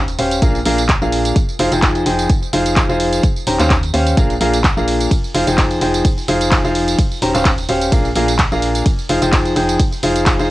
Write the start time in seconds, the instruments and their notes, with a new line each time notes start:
Already playing: fm bass D#1
0.08 closed hi-hat, tambourine
0.19 fm bass D#1, grand piano C#4 G4 C5 F5, open hi-hat
0.31 closed hi-hat, tambourine
0.42 fm bass A#1, grand piano A#2 D4 G#4 A#4 F5, kick, closed hi-hat, tambourine
0.55 tambourine
0.66 fm bass A#1, grand piano A#2 D4 G#4 A#4 F5, open hi-hat
0.78 closed hi-hat, tambourine
0.89 kick, clap, closed hi-hat, tambourine
1.02 fm bass A#1, grand piano A#2 D4 G#4 A#4 F5, tambourine
1.12 open hi-hat
1.25 closed hi-hat, tambourine
1.36 kick, closed hi-hat, tambourine
1.49 tambourine
1.59 fm bass F1, grand piano F3 D#4 G#4 C5 F5, open hi-hat
1.72 fm bass F1, grand piano F3 D#4 G#4 C5 G5, closed hi-hat, tambourine
1.82 kick, clap, closed hi-hat, tambourine
1.95 closed hi-hat, tambourine
2.06 fm bass F1, grand piano F3 D#4 G#4 C5 G5, open hi-hat
2.19 closed hi-hat, tambourine
2.30 kick, closed hi-hat, tambourine
2.43 tambourine
2.53 fm bass F1, grand piano F3 D#4 G#4 C5 F5, open hi-hat
2.66 closed hi-hat, tambourine
2.76 kick, clap, closed hi-hat, tambourine
2.89 fm bass F1, grand piano F3 D#4 G#4 C5 F5, tambourine
3.00 open hi-hat
3.13 closed hi-hat, tambourine
3.23 kick, closed hi-hat, tambourine
3.36 tambourine
3.47 fm bass D#1, grand piano D#3 C#4 G4 C5 A#5, open hi-hat
3.59 fm bass D#2, grand piano D#3 C#4 G4 C5 F5, clap, closed hi-hat, tambourine
3.70 kick, clap, closed hi-hat, tambourine
3.83 closed hi-hat, tambourine
3.94 fm bass D#2, grand piano C#4 G4 C5 F5, open hi-hat
4.07 closed hi-hat, tambourine
4.17 fm bass A#1, grand piano A#2 D4 G#4 A#4 F5, kick, closed hi-hat, tambourine
4.30 closed hi-hat, tambourine
4.41 fm bass A#1, grand piano A#2 D4 G#4 A#4 F5, open hi-hat
4.53 closed hi-hat, tambourine
4.64 kick, clap, closed hi-hat, tambourine
4.77 fm bass A#1, grand piano A#2 D4 G#4 A#4 F5, tambourine
4.88 open hi-hat
5.00 closed hi-hat, tambourine
5.11 kick, closed hi-hat, ride, tambourine
5.24 tambourine
5.34 fm bass F1, grand piano F3 D#4 G#4 C5 F5, open hi-hat
5.47 fm bass F1, grand piano F3 D#4 G#4 C5 G5, closed hi-hat, tambourine
5.58 kick, clap, closed hi-hat, ride, tambourine
5.71 closed hi-hat, tambourine
5.81 fm bass F1, grand piano F3 D#4 G#4 C5 G5, open hi-hat
5.94 closed hi-hat, tambourine
6.05 kick, closed hi-hat, ride, tambourine
6.18 tambourine
6.28 fm bass F1, grand piano F3 D#4 G#4 C5 F5, open hi-hat
6.41 closed hi-hat, tambourine
6.51 kick, clap, closed hi-hat, ride, tambourine
6.64 fm bass F1, grand piano F3 D#4 G#4 C5 F5, tambourine
6.75 open hi-hat
6.88 closed hi-hat, tambourine
6.99 kick, closed hi-hat, ride, tambourine
7.11 tambourine
7.22 fm bass D#1, grand piano D#3 C#4 G4 C5 A#5, open hi-hat
7.35 fm bass D#1, grand piano D#3 C#4 G4 C5 F5, clap, closed hi-hat, tambourine
7.45 kick, clap, closed hi-hat, ride, tambourine
7.58 closed hi-hat, tambourine
7.69 fm bass D#1, grand piano C#4 G4 C5 F5, open hi-hat
7.82 closed hi-hat, tambourine
7.92 fm bass A#1, grand piano A#2 D4 G#4 A#4 F5, kick, closed hi-hat, ride, tambourine
8.05 tambourine
8.16 fm bass A#1, grand piano A#2 D4 G#4 A#4 F5, open hi-hat
8.28 closed hi-hat, tambourine
8.39 kick, clap, closed hi-hat, ride, tambourine
8.52 fm bass A#1, grand piano A#2 D4 G#4 A#4 F5, tambourine
8.62 open hi-hat
8.75 closed hi-hat, tambourine
8.86 kick, closed hi-hat, ride, tambourine
8.99 tambourine
9.09 fm bass F1, grand piano F3 D#4 G#4 C5 F5, open hi-hat
9.22 fm bass F1, grand piano F3 D#4 G#4 C5 G5, closed hi-hat, tambourine
9.33 kick, clap, closed hi-hat, ride, tambourine
9.46 closed hi-hat, tambourine
9.56 fm bass F1, grand piano F3 D#4 G#4 C5 G5, open hi-hat
9.69 closed hi-hat, tambourine
9.80 kick, closed hi-hat, ride, tambourine
9.93 tambourine
10.03 fm bass F1, grand piano F3 D#4 G#4 C5 F5, open hi-hat
10.16 closed hi-hat, tambourine
10.26 kick, clap, closed hi-hat, ride, tambourine
10.39 fm bass F1, grand piano F3 D#4 G#4 C5 F5, tambourine